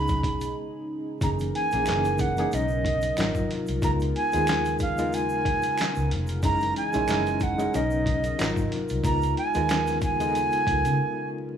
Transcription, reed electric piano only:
Already playing: G#3 B3 C#4 D#4 F#4 G#4
1.21 E3 A#3 C#4 D#4 G#4
1.73 E3 A#3 C#4 D#4 G#4
1.87 E3 A#3 C#4 D#4 G#4
2.38 E3 A#3 C#4 D#4 G#4
2.52 F#3 B3 C#4 D#4 A#4
3.18 F#3 C4 D#4 F4 A#4
3.83 G#3 B3 D#4 F4 A#4
4.33 G#3 B3 D#4 F4 G#4
4.98 G#3 B3 D#4 F4 A#4
6.43 G#3 C#4 D#4 E4 A#4
6.93 G#3 C#4 D#4 E4 C#5
7.08 G#3 C#4 D#4 E4 A#4
7.58 G#3 C#4 D#4 E4 A#4
7.74 F#3 B3 C#4 D#4 A#4
8.39 F#3 C4 D#4 F4 A#4
9.04 G#3 B3 D#4 F4 A#4
9.55 G#3 B3 D#4 F4 A#4
10.20 G#3 B3 D#4 F4 A4
10.28 A#4

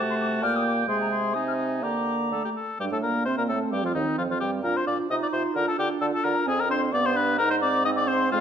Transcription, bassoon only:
Already playing: C3
0.43 A#2
0.88 C3
1.83 D3
2.32 D3
2.80 G2
2.91 A2
3.03 A#2
3.26 C3
3.38 A#2
3.49 A2
3.72 G2
3.84 F2
3.95 D#2
4.18 F2
4.30 F2
4.42 G2
4.64 A#2
4.87 A#2
5.10 C3
5.33 C3
5.56 D3
5.78 D3
6.01 D3
6.24 D3
6.47 F2
6.93 G2
7.39 G#2
8.32 F2

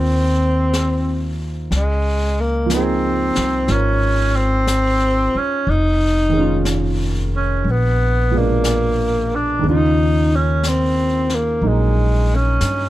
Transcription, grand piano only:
Already playing: A#3 D#4 F4 G#4 A#4 C5
2.66 F3 A#3
2.73 D#4
2.77 G#4
3.69 F4 A#4 C5
6.29 D#3 G#3
6.37 C#4 F4
8.31 B2 F3 G#3
8.36 D4
9.59 D#3 G#4
9.67 C#3 F4
11.62 F#3 A#3 D#4

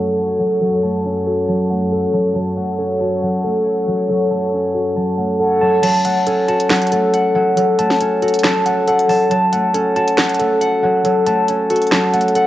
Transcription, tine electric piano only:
Already playing: A4 F#5 A5
0.40 F#5
0.62 A4
0.83 A5
1.27 A4
1.48 A5
1.70 F#5
1.92 A4
2.14 A5
2.35 A5
2.57 F#5
2.79 A4
3.01 A5
3.22 F#5
3.44 A4
3.87 F#5
4.09 A4
4.31 A5
4.75 A4
4.96 A5
5.18 F#5
5.40 A4
5.61 A5
5.83 A5
6.05 F#5
6.27 A4
6.48 A5
6.71 F#5
6.92 A4
7.35 F#5
7.57 A4
7.79 A5
8.22 A4
8.44 A5
8.66 F#5
8.88 A4
9.09 A5
9.31 A5
9.53 F#5
9.74 A4
9.96 A5
10.18 F#5
10.40 A4
10.83 F#5
11.05 A4
11.27 A5
11.70 A4
11.92 A5
12.14 F#5
12.35 A4

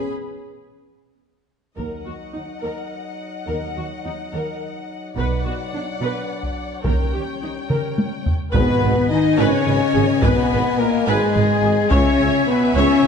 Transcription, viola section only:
1.77 A#4
2.05 F#4
2.34 D#4
2.62 A#4
3.47 A#4
3.77 F#4
4.05 D#4
4.34 A#4
5.18 B4
5.46 F#4
5.74 D4
6.02 B4
6.86 A#4
7.14 G4
7.42 D#4
7.70 A#4
8.53 B4
8.80 B4
9.38 B4
9.66 B4
9.94 G#4
10.23 B4
10.52 B4
11.07 B4
11.35 B4
11.63 G#4
11.92 C#5 E5
12.19 C#5
12.76 C#5

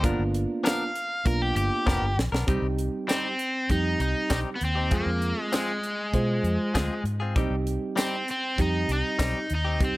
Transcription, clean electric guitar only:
0.03 F3 B3 D4 A#4
0.64 F3 B3 D4 A#4
1.86 F3 B3 D4 A#4
2.32 B3 D4 A#4
2.47 G3 C4 D#4 G4
3.08 G3 C4 D#4 G4
4.30 G3 C4 D#4 G4
4.75 C4 D#4 G4
4.91 F3 C4 F4 G#4
5.52 F3 C4 F4 G#4
6.74 F3 C4 F4 G#4
7.20 C4 F4 G#4
7.36 G3 C4 D#4 G4
7.96 G3 C4 D#4 G4
9.19 G3 C4 D#4 G4
9.65 C4 D#4 G4

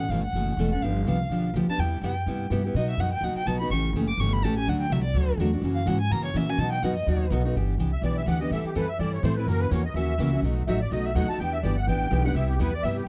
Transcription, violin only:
0.00 F#5
0.10 F5
0.24 F#5
0.72 F#5
0.82 F5
1.06 F5
1.70 A5
1.79 G5
2.04 G5
2.76 D#5
2.90 E5
3.00 F#5
3.13 G5
3.24 F#5
3.37 G5
3.47 A5
3.60 B5
3.71 C#6
4.08 D6
4.20 C#6
4.33 B5
4.44 A5
4.58 G#5
4.69 F#5
4.80 G5
4.92 E5
5.04 D5
5.75 F5
5.87 F#5
6.01 G#5
6.12 A#5
6.25 C#5
6.37 E5
6.50 G#5
6.59 A5
6.72 G5
6.83 F#5
6.96 D#5

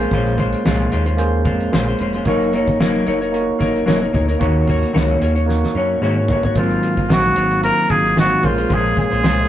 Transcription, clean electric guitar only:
0.00 G#3 C#4 F4 C5
0.12 A#2 F3 G#3 C#4 F4 C5
0.37 G#3 C#4 F4 C5
0.65 A#2 F3 G#3 C#4 F4 C5
0.92 G#3 C#4 F4 C5
1.06 G#3 C#4 F4 C5
1.45 G#3 C#4 F4 C5
1.72 A#2 F3 G#3 C#4 F4 C5
1.88 G#3 C#4 F4 C5
2.00 G#3 C#4 F4 C5
2.15 G#3 C#4 F4 C5
2.27 F#3 A#3 D#4 A#4 C#5
2.54 A#3 D#4 A#4 C#5
2.80 F#3 A#3 D#4 A#4 C#5
3.06 A#3 D#4 A#4 C#5
3.21 D#4 A#4 C#5
3.59 A#3 D#4 A#4 C#5
3.86 F#3 A#3 D#4 A#4 C#5
4.01 D#4 A#4 C#5
4.13 A#3 D#4 A#4 C#5
4.28 D#4 A#4 C#5
4.40 D#3 A#3 C#4 F#4 C#5
4.67 A#3 C#4 F#4 C#5
4.93 D#3 A#3 C#4 F#4 C#5
5.20 A#3 C#4 F#4 C#5
5.35 C#4 F#4 C#5
5.75 A#3 C#4 F#4 C#5
6.02 D#3 A#3 C#4 F#4 C#5
6.17 C#4 F#4 C#5
6.29 A#3 C#4 F#4 C#5
6.45 C#4 F#4 C#5
6.57 G#2 D#3 F#3 C4 F4
6.97 F#3 C4 F4
7.09 G#2 D#3 F#3 C4 F4
7.35 D#3 F#3 C4 F4
7.89 D#3 F#3 C4 F4
8.16 G#2 D#3 F#3 C4 F4
8.43 G#3 C#4 F4 C5
8.58 G#3 C#4 F4 C5
8.69 A#2 F3 G#3 C#4 F4 C5
9.12 G#3 C#4 F4 C5
9.23 A#2 F3 G#3 C#4 F4 C5

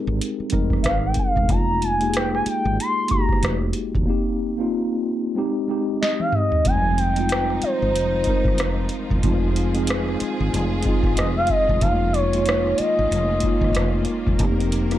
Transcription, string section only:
6.65 D#3 F3 D#4 F4
9.22 G#4
11.82 A#3 C#4
14.39 C4 A#4

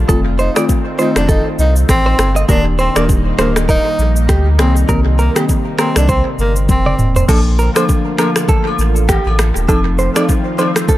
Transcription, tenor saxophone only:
0.40 D#4
1.00 D#4
1.17 D4
1.30 D#4
1.60 D#4
1.90 C4
2.50 D4
2.80 C4
2.98 A#3
3.40 A#3
3.70 D#4
4.60 C4
5.20 A#3
5.80 C4
5.98 D4
6.10 C4
6.40 A#3
6.70 C4

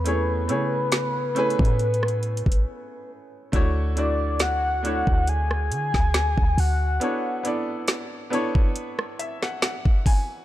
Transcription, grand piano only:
0.04 A3 C#4 E4 G#4 C#5
0.48 A3 C#4 E4 G#4 C#5
1.35 A3 C#4 E4 G#4 B4
3.52 A3 D4 E4 F#4 C#5
3.95 A3 D4 E4 F#4 D5
4.83 A3 D4 E4 F#4 C#5
7.00 B3 D4 E4 A4 C#5
7.43 B3 D4 E4 A4 D5
8.30 B3 D4 E4 A4 C#5
9.19 E5
9.43 F#5
9.63 F#5
10.06 G#5

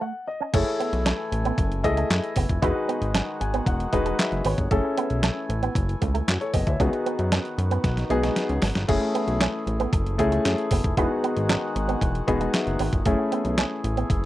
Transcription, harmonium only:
0.53 E3 A3 G#5
2.62 D#3 G#3 F#4
4.71 E3 A3
6.80 D#3 B3 F#4
8.88 E3 A3 G#4
10.97 D#3 G#3 F#4
13.05 E3 A3 G#4

